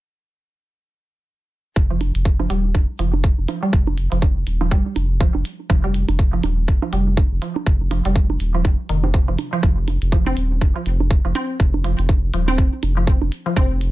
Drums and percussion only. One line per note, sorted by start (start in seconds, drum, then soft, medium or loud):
1.76 kick loud
2.01 closed hi-hat medium
2.01 low bongo soft
2.15 closed hi-hat soft
2.25 kick loud
2.40 low bongo soft
2.50 closed hi-hat medium
2.75 kick loud
2.75 low bongo soft
2.99 closed hi-hat medium
3.13 low bongo soft
3.24 kick loud
3.48 closed hi-hat medium
3.48 low bongo soft
3.73 kick loud
3.87 low bongo soft
3.98 closed hi-hat medium
4.12 closed hi-hat soft
4.22 kick loud
4.22 low bongo soft
4.47 closed hi-hat medium
4.61 low bongo soft
4.71 kick loud
4.96 closed hi-hat medium
4.96 low bongo soft
5.21 kick loud
5.35 low bongo soft
5.45 closed hi-hat loud
5.70 kick loud
5.70 low bongo soft
5.94 closed hi-hat medium
6.08 closed hi-hat soft
6.08 low bongo soft
6.19 kick loud
6.43 closed hi-hat medium
6.43 low bongo soft
6.68 kick loud
6.82 low bongo soft
6.93 closed hi-hat medium
7.17 kick loud
7.17 low bongo soft
7.42 closed hi-hat medium
7.56 low bongo soft
7.66 kick loud
7.91 closed hi-hat medium
7.91 low bongo soft
8.05 closed hi-hat soft
8.16 kick loud
8.30 low bongo soft
8.40 closed hi-hat medium
8.65 kick loud
8.65 low bongo soft
8.89 closed hi-hat medium
9.04 low bongo soft
9.14 kick loud
9.39 closed hi-hat medium
9.39 low bongo soft
9.63 kick loud
9.88 closed hi-hat medium
9.88 low bongo soft
10.02 closed hi-hat soft
10.12 kick loud
10.27 low bongo soft
10.37 closed hi-hat medium
10.61 kick loud
10.61 low bongo soft
10.86 closed hi-hat medium
11.00 low bongo soft
11.11 kick loud
11.35 closed hi-hat medium
11.35 low bongo soft
11.60 kick loud
11.74 low bongo soft
11.84 closed hi-hat medium
11.99 closed hi-hat soft
12.09 kick loud
12.09 low bongo soft
12.34 closed hi-hat medium
12.48 low bongo soft
12.58 kick loud
12.83 closed hi-hat medium
12.83 low bongo soft
13.07 kick loud
13.22 low bongo soft
13.32 closed hi-hat medium
13.57 kick loud
13.57 low bongo soft
13.81 closed hi-hat medium